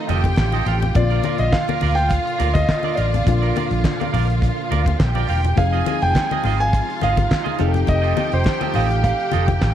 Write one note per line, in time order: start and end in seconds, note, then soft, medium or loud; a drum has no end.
0.00 0.91 D#3 medium
0.00 0.62 F3 medium
0.00 0.93 A3 medium
0.00 0.63 C4 medium
0.00 0.92 C4 medium
0.00 0.63 D#4 medium
0.00 5.54 F4 medium
0.00 0.63 A4 medium
0.08 0.32 F1 loud
0.08 0.24 F4 medium
0.08 0.94 G4 medium
0.08 0.24 A4 medium
0.08 0.23 D#5 loud
0.08 0.94 G5 medium
0.08 closed hi-hat medium
0.08 muted conga soft
0.08 high conga medium
0.24 kick medium
0.24 closed hi-hat soft
0.24 high conga medium
0.36 0.61 A1 loud
0.36 muted clean electric guitar stroke soft
0.36 kick loud
0.36 snare loud
0.36 clap medium
0.36 muted conga soft
0.52 0.65 F4 medium
0.52 0.66 A4 medium
0.52 0.67 D#5 loud
0.52 closed hi-hat soft
0.52 high conga medium
0.66 0.89 A1 medium
0.66 0.79 F4 medium
0.66 0.79 A4 medium
0.66 0.79 F5 medium
0.66 snare soft
0.66 closed hi-hat medium
0.66 muted conga soft
0.82 muted clean electric guitar stroke soft
0.82 closed hi-hat soft
0.82 low conga medium
0.93 1.18 A#1 loud
0.93 3.22 A#2 medium
0.93 5.52 D3 medium
0.93 9.74 F3 medium
0.93 5.52 A#3 medium
0.93 3.22 A#3 medium
0.93 1.03 C4 soft
0.93 4.96 F4 medium
0.93 3.23 F4 medium
0.93 1.41 D5 medium
0.93 4.96 F5 medium
0.93 muted clean electric guitar stroke soft
0.93 kick loud
0.93 closed hi-hat medium
0.93 low conga medium
1.03 3.26 D3 medium
1.10 1.23 F4 medium
1.10 1.23 A#4 medium
1.10 1.24 D5 medium
1.10 closed hi-hat soft
1.23 1.36 F4 medium
1.23 1.36 A#4 medium
1.23 1.37 D5 medium
1.23 closed hi-hat medium
1.23 high conga medium
1.38 1.50 A#1 medium
1.38 1.53 D#5 loud
1.38 muted clean electric guitar stroke medium
1.38 closed hi-hat soft
1.52 1.98 F5 loud
1.52 muted clean electric guitar stroke soft
1.52 kick loud
1.52 snare loud
1.52 clap medium
1.68 1.80 F4 medium
1.68 1.80 A#4 medium
1.68 1.79 D5 medium
1.68 closed hi-hat soft
1.68 high conga medium
1.81 2.17 D2 medium
1.81 1.97 F4 medium
1.81 1.97 A#4 loud
1.81 1.96 D5 loud
1.81 open hi-hat medium
1.81 muted conga soft
1.81 low conga medium
1.95 2.10 G5 loud
1.95 muted clean electric guitar stroke soft
1.95 closed hi-hat soft
2.09 2.55 F5 loud
2.09 kick loud
2.09 closed hi-hat medium
2.09 muted conga soft
2.25 muted clean electric guitar stroke soft
2.25 closed hi-hat soft
2.38 2.63 D2 loud
2.38 2.54 F4 medium
2.38 2.54 A#4 medium
2.38 2.54 D5 medium
2.38 closed hi-hat medium
2.38 muted conga soft
2.38 high conga medium
2.54 2.98 D#5 loud
2.54 muted clean electric guitar stroke soft
2.54 kick medium
2.54 closed hi-hat soft
2.54 high conga medium
2.69 muted clean electric guitar stroke soft
2.69 kick loud
2.69 snare loud
2.69 clap medium
2.83 2.96 F4 medium
2.83 2.97 A#4 medium
2.83 2.98 D5 medium
2.83 high conga medium
2.95 3.21 A1 loud
2.95 3.09 F4 medium
2.95 3.10 A#4 medium
2.95 4.08 D5 medium
2.95 3.10 F5 medium
2.95 closed hi-hat medium
2.95 muted conga soft
3.13 muted clean electric guitar stroke soft
3.13 closed hi-hat medium
3.13 low conga medium
3.25 3.50 A#1 medium
3.25 5.53 A#2 medium
3.25 5.53 A#3 medium
3.25 5.54 D4 medium
3.25 5.54 F4 medium
3.25 muted clean electric guitar stroke soft
3.25 kick loud
3.25 closed hi-hat medium
3.25 muted conga soft
3.25 low conga medium
3.42 3.55 F4 medium
3.42 3.56 A#4 medium
3.42 3.55 D5 medium
3.42 closed hi-hat soft
3.56 3.68 F4 medium
3.56 3.68 A#4 medium
3.56 3.69 D5 medium
3.56 closed hi-hat medium
3.56 high conga medium
3.71 3.82 A#1 loud
3.71 muted clean electric guitar stroke soft
3.71 closed hi-hat soft
3.84 muted clean electric guitar stroke soft
3.84 kick loud
3.84 snare loud
3.84 clap medium
3.84 muted conga soft
4.00 4.11 F4 medium
4.00 4.11 A#4 medium
4.00 4.10 D5 medium
4.00 closed hi-hat soft
4.00 high conga medium
4.13 4.48 A#1 loud
4.13 4.28 F4 medium
4.13 4.28 A#4 medium
4.13 4.27 D5 medium
4.13 open hi-hat medium
4.13 muted conga soft
4.13 low conga medium
4.28 muted clean electric guitar stroke soft
4.28 closed hi-hat medium
4.42 kick loud
4.42 closed hi-hat medium
4.57 muted clean electric guitar stroke soft
4.70 4.94 D2 medium
4.70 4.86 F4 medium
4.70 4.86 A#4 medium
4.70 4.85 D5 medium
4.70 closed hi-hat medium
4.70 muted conga soft
4.70 high conga medium
4.86 muted clean electric guitar stroke soft
4.86 kick medium
4.86 closed hi-hat soft
4.86 high conga medium
4.99 5.23 A#1 loud
4.99 5.56 G4 medium
4.99 5.56 G5 medium
4.99 muted clean electric guitar stroke soft
4.99 kick loud
4.99 snare loud
4.99 clap medium
4.99 muted conga soft
5.15 5.26 F4 medium
5.15 5.28 A#4 medium
5.15 5.29 D5 medium
5.15 closed hi-hat soft
5.15 high conga medium
5.28 5.52 E1 medium
5.28 5.40 F4 medium
5.28 5.41 A#4 medium
5.28 5.41 F5 medium
5.28 snare soft
5.28 open hi-hat medium
5.44 muted clean electric guitar stroke soft
5.44 closed hi-hat soft
5.44 low conga medium
5.56 5.80 F1 loud
5.56 9.74 C3 medium
5.56 7.55 F3 medium
5.56 7.58 G#3 medium
5.56 7.55 C4 medium
5.56 9.74 D#4 medium
5.56 7.56 D#4 medium
5.56 6.43 G#4 medium
5.56 7.57 G#4 medium
5.56 6.03 F5 loud
5.56 6.43 G#5 medium
5.56 muted clean electric guitar stroke soft
5.56 kick loud
5.56 closed hi-hat medium
5.56 low conga medium
5.73 5.85 F4 medium
5.73 5.86 G#4 medium
5.73 5.86 D#5 medium
5.73 closed hi-hat soft
5.86 5.98 F4 medium
5.86 5.99 G#4 medium
5.86 5.99 D#5 medium
5.86 closed hi-hat medium
5.86 muted conga soft
5.86 high conga medium
6.02 6.13 F1 loud
6.02 6.61 G5 loud
6.02 muted clean electric guitar stroke soft
6.02 closed hi-hat soft
6.15 muted clean electric guitar stroke medium
6.15 kick loud
6.15 snare loud
6.15 clap loud
6.15 muted conga soft
6.31 6.43 F4 medium
6.31 6.42 G#4 medium
6.31 6.42 D#5 medium
6.31 closed hi-hat soft
6.31 high conga medium
6.44 6.79 G#1 loud
6.44 6.60 F4 loud
6.44 7.58 F4 medium
6.44 6.60 G#4 medium
6.44 6.59 D#5 loud
6.44 7.58 F5 medium
6.44 open hi-hat medium
6.44 low conga medium
6.60 6.99 G#5 loud
6.60 muted clean electric guitar stroke soft
6.60 closed hi-hat soft
6.73 kick loud
6.73 closed hi-hat medium
6.89 muted clean electric guitar stroke soft
6.89 closed hi-hat soft
7.01 7.25 G#1 medium
7.01 7.17 F4 medium
7.01 7.17 G#4 medium
7.01 7.17 D#5 medium
7.01 7.92 F5 loud
7.01 closed hi-hat medium
7.01 muted conga soft
7.01 high conga medium
7.17 kick loud
7.17 closed hi-hat soft
7.17 high conga medium
7.29 muted clean electric guitar stroke soft
7.29 kick loud
7.29 snare loud
7.29 clap medium
7.44 7.57 F4 medium
7.44 7.59 G#4 medium
7.44 7.59 D#5 medium
7.44 high conga medium
7.59 7.83 F1 loud
7.59 9.74 F3 medium
7.59 9.74 A3 medium
7.59 9.74 C4 medium
7.59 9.74 D#4 medium
7.59 7.71 F4 medium
7.59 9.74 G4 medium
7.59 7.67 G#4 medium
7.59 7.71 A4 medium
7.59 7.72 F5 medium
7.59 9.74 G5 medium
7.59 closed hi-hat medium
7.59 muted conga soft
7.68 9.74 A4 medium
7.74 muted clean electric guitar stroke soft
7.74 closed hi-hat soft
7.74 low conga medium
7.86 8.12 F1 medium
7.86 8.34 D#5 loud
7.86 muted clean electric guitar stroke soft
7.86 kick loud
7.86 closed hi-hat medium
7.86 low conga medium
8.02 8.15 F4 medium
8.02 8.16 A4 medium
8.02 8.17 D#5 medium
8.02 closed hi-hat soft
8.16 8.29 F4 medium
8.16 8.29 A4 medium
8.16 8.30 D#5 medium
8.16 closed hi-hat medium
8.16 muted conga soft
8.16 high conga medium
8.32 8.44 F1 loud
8.32 8.77 C5 loud
8.32 muted clean electric guitar stroke medium
8.32 closed hi-hat soft
8.44 muted clean electric guitar stroke soft
8.44 kick loud
8.44 snare loud
8.44 clap medium
8.44 muted conga soft
8.60 8.72 F4 medium
8.60 8.72 A4 medium
8.60 8.72 D#5 medium
8.60 closed hi-hat soft
8.60 high conga medium
8.74 9.11 A1 loud
8.74 8.90 F4 medium
8.74 8.90 A4 medium
8.74 8.89 D#5 loud
8.74 9.02 F5 medium
8.74 open hi-hat medium
8.74 low conga medium
8.90 muted clean electric guitar stroke medium
8.90 closed hi-hat medium
9.04 9.74 F5 medium
9.04 kick loud
9.04 closed hi-hat medium
9.18 muted clean electric guitar stroke soft
9.18 closed hi-hat soft
9.32 9.56 F1 medium
9.32 9.48 F4 medium
9.32 9.47 A4 loud
9.32 9.47 D#5 loud
9.32 closed hi-hat medium
9.32 muted conga soft
9.32 high conga medium
9.48 muted clean electric guitar stroke medium
9.48 kick loud
9.48 closed hi-hat soft
9.48 high conga medium
9.60 9.74 A1 loud
9.60 muted clean electric guitar stroke soft
9.60 kick loud
9.60 snare loud
9.60 clap medium